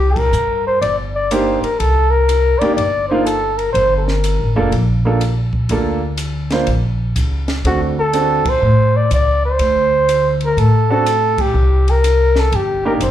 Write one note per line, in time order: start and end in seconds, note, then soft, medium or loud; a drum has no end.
0.00 0.29 C2 medium
0.00 0.19 G4 loud
0.16 0.66 A#4 medium
0.16 kick medium
0.16 ride medium
0.33 0.78 G2 medium
0.33 hi-hat pedal medium
0.67 0.81 C5 medium
0.81 1.59 G1 medium
0.81 0.96 D5 medium
0.81 ride medium
1.15 1.33 D5 medium
1.31 1.60 A#3 medium
1.31 1.60 D4 medium
1.31 1.60 D#4 medium
1.31 1.60 G4 medium
1.31 1.62 C5 medium
1.31 hi-hat pedal soft
1.31 ride medium
1.62 1.80 A#4 medium
1.62 muted upright bass stroke soft
1.62 ride soft
1.79 2.57 C2 medium
1.79 2.12 A4 loud
1.79 ride medium
2.11 2.60 A#4 medium
2.29 hi-hat pedal medium
2.29 ride medium
2.59 2.76 A#3 medium
2.59 2.76 D4 medium
2.59 2.76 D#4 medium
2.59 2.76 G4 medium
2.59 2.74 D5 medium
2.59 muted upright bass stroke soft
2.59 ride soft
2.75 3.71 G1 medium
2.75 3.06 D5 medium
2.75 ride medium
3.08 3.25 A#3 medium
3.08 3.25 D4 medium
3.08 3.25 D#4 medium
3.08 3.25 F4 medium
3.08 3.24 C5 medium
3.25 3.59 A4 medium
3.25 hi-hat pedal medium
3.25 ride medium
3.57 3.72 A#4 medium
3.57 ride soft
3.73 4.35 G1 medium
3.73 3.95 C5 loud
3.73 ride medium
3.97 4.07 A4 medium
4.05 4.55 A#4 medium
4.05 snare soft
4.24 hi-hat pedal medium
4.24 ride medium
4.40 4.55 A1 medium
4.56 4.71 F1 medium
4.56 4.71 A#3 medium
4.56 4.71 D4 medium
4.56 4.71 F4 medium
4.56 4.71 A4 medium
4.72 5.65 A#1 medium
4.72 ride medium
5.05 5.20 A#3 medium
5.05 5.20 D4 medium
5.05 5.20 F4 medium
5.05 5.20 A4 medium
5.21 hi-hat pedal medium
5.21 ride medium
5.53 kick soft
5.69 6.63 D2 medium
5.69 5.99 A#3 medium
5.69 5.99 D4 soft
5.69 6.00 F4 medium
5.69 6.00 A4 medium
5.69 ride medium
6.17 hi-hat pedal medium
6.17 ride medium
6.50 6.66 A#3 medium
6.50 6.66 D4 medium
6.50 6.67 F4 medium
6.50 6.67 C5 medium
6.50 snare soft
6.50 ride soft
6.67 7.12 A#1 medium
6.67 ride medium
7.16 7.61 C#2 medium
7.16 hi-hat pedal soft
7.16 ride medium
7.48 snare medium
7.48 ride soft
7.64 8.41 D2 medium
7.64 7.94 C4 medium
7.64 7.94 D4 soft
7.64 7.94 F#4 soft
7.64 7.81 F#4 medium
7.64 7.94 A4 medium
7.64 ride medium
7.99 8.50 A4 medium
8.13 8.42 C4 medium
8.13 8.42 D4 soft
8.13 8.43 F#4 soft
8.13 8.43 A4 medium
8.13 hi-hat pedal soft
8.13 ride medium
8.45 8.98 C5 loud
8.45 muted upright bass stroke soft
8.45 kick medium
8.45 ride medium
8.62 9.08 A2 medium
8.96 9.12 D5 medium
9.11 9.56 C#2 medium
9.11 9.42 D5 loud
9.11 hi-hat pedal soft
9.11 ride medium
9.46 10.38 C5 medium
9.59 10.53 D2 medium
9.59 ride medium
10.09 hi-hat pedal medium
10.09 ride medium
10.41 ride soft
10.45 10.60 A#4 medium
10.57 11.51 A2 medium
10.57 10.90 A4 medium
10.57 ride medium
10.90 11.05 C4 medium
10.90 11.05 D4 medium
10.90 11.05 F#4 medium
10.90 11.05 A4 medium
10.90 11.42 A4 medium
11.06 hi-hat pedal medium
11.06 ride medium
11.38 11.92 G4 medium
11.38 kick medium
11.38 ride medium
11.54 12.48 C2 medium
11.88 12.41 A#4 loud
11.88 ride soft
12.04 hi-hat pedal medium
12.04 ride medium
12.36 12.57 A4 medium
12.36 snare soft
12.52 12.98 G1 medium
12.52 12.86 G4 medium
12.52 ride medium
12.85 13.00 A#3 medium
12.85 13.00 D4 medium
12.85 13.00 D#4 medium
12.85 13.00 G4 medium
12.85 12.93 A#4 medium
13.01 13.11 F#1 medium
13.01 13.11 C5 medium
13.01 hi-hat pedal soft
13.01 ride medium